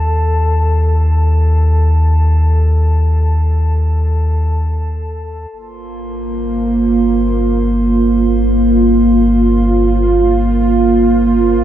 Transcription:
Already playing: D#2 A4 A5
5.52 G1 A#3 F4 C6
5.57 C5

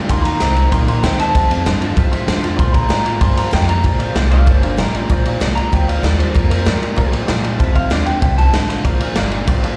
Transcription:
0.09 D#2 D#3 A#3 D#5 G5 A#5 C6, kick, ride
0.25 D#3 A#3 D#5 G5 A#5, ride
0.40 C2 D#3 A#3 C4 D#4 G4 D#5 G5 A#5, snare, ride
0.55 D#3 C4 G4 D#5 G5 A#5, ride
0.59 D#4
0.72 A#1 A#2 D#3 A#3 D#5 G5 A#5 C6, kick, ride
0.87 D#3 A#3 D#5 G5 A#5 C6, ride
1.02 D#2 D#3 A#3 C4 D#4 G4 D#5 G5 C6, snare, ride
1.18 D#3 C4 D#4 G4 D#5 G5 A5 C6, snare, ride
1.34 F2 C3 C5 F5 A5, kick, ride
1.49 F2 C3 C5 F5 A5, ride
1.64 F2 G2 D3 D#3 A3 C4 F4 C5 F5 A5, snare, ride
1.80 F2 D3 C4 F4 C5 F5 A5, ride
1.96 F2 A2 C3 C5 F5 A5, kick, ride
2.11 F2 C3 C5 F5 C6, ride
2.27 F2 D3 D#3 A3 C4 F4 C5 F5 A5, snare, ride
2.42 F2 D3 C4 F4 C5 F5 A5, ride
2.56 A#2 F3 D5 F5 A#5 C6, kick, ride
2.73 A#2 F3 D5 F5 A#5, kick, ride
2.89 A2 A#2 F3 G3 A#3 D4 F4 D5 F5 A#5, snare, ride
3.05 A#2 G3 D4 F4 D5 F5 A#5, ride
3.21 F2 G2 A#2 F3 D5 F5 A5 C6, kick, ride
3.37 A#2 F3 D5 F5 A#5, ride
3.51 F2 A#2 F3 G3 A#3 D4 F4 D5 F5 G5 A5, snare, ride
3.68 A#2 G3 D4 F4 D5 F5 G5 A#5, ride
3.84 A#1 A#2 F3 D5 F5 A#5, kick, ride
3.99 A#2 F3 D5 F5 A#5, ride
4.15 C2 A#2 F3 G3 A#3 D4 F4 D5 F5 G5, snare, ride
4.31 A#2 G3 D4 F4 D5 F5 A#5, ride
4.47 G1 F2 A#2 F3 A#4 C#5 D5 F5 A5, kick, ride
4.62 A#2 F3 D4 A#4 D5 F5 A#5, ride
4.77 A1 A#2 F3 G3 A#3 D4 F4 A#4 D5 F5 G5, snare, ride
4.94 A#2 G3 D4 F4 D5 F5 A#5, ride
5.10 A#1 A#2 F3 D5 F5 A#5, kick, ride
5.25 A#2 F3 D5 F5 A#5, ride
5.40 C2 A#2 F3 G3 A#3 D4 F4 D5 F5 A#5, snare, ride
5.55 A#2 G3 D4 F4 D5 F5 A#5, muted upright bass stroke, ride
5.72 D2 F2 A#2 F3 D5 F5 G5, kick, ride
5.88 A#2 F3 D5 F5 A#5, ride
6.03 D#2 A#2 F3 G3 A#3 D4 F4 D5 F5 A#5, snare, ride
6.19 A#2 G3 D4 F4 C5 D5 F5 A5, ride
6.34 F2 A#2 F3 A#4 D5 F5 A#5, kick, ride
6.50 A#2 F3 A#4 D5 F5 A#5, ride
6.66 G2 A#2 F3 G3 A#3 D4 F4 D5 F5 C6, snare, ride
6.81 A#2 G3 D4 F4 D5 F5 A#5, ride
6.96 F2 A2 A#2 F3 D5 F5 A#5, kick, ride
7.12 A#2 F3 D5 F5 G5, ride
7.27 A#2 F3 G3 A#3 D4 F4 D5 F5 A#5, snare, ride
7.43 A#2 G3 D4 F4 D5 F5 A5, ride
7.59 F2 C3 C5 F5 A5, kick, ride
7.75 F2 C3 C5 F5 C6, kick, ride
7.90 D#2 F2 D3 D#3 A3 C4 F4 C5 D5 F5 G5, snare, ride
8.05 F2 D3 C4 F4 C5 F5 G5 A5, ride
8.22 C2 F2 G2 C3 C5 F5 G5 A5, kick, ride
8.37 F2 C3 C5 F5 G5 A5, ride
8.53 A1 F2 A2 D3 C5 F5 A5, snare, ride
8.68 F2 D3 C5 F5 C6, snare, ride
8.84 A#1 A#2 F3 D5 F5 A#5, kick, ride
9.00 A#2 F3 D5 F5 A#5, ride
9.16 G1 A#2 F3 G3 A#3 D4 F4 D5 F5 A#5, snare, ride
9.31 A#2 G3 D4 F4 D5 F5 A#5, ride
9.47 A1 A#2 C3 F3 D5 F5 G5, kick, ride
9.63 A#2 F3 D5 F5 A5, ride

